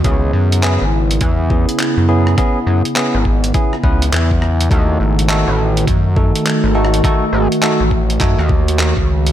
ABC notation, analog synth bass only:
X:1
M:4/4
L:1/16
Q:"Swing 16ths" 1/4=103
K:C#m
V:1 name="Analog synth bass" clef=bass
C,,2 F,,3 G,,,3 E,,3 z2 F,,3 | z2 F,, z2 G,,,3 z2 C,,2 E,,4 | D,,2 G,,,3 A,,,3 F,,3 z2 G,,,3 | z2 G,,, z2 A,,,3 F,, D,,4 C,,3 |]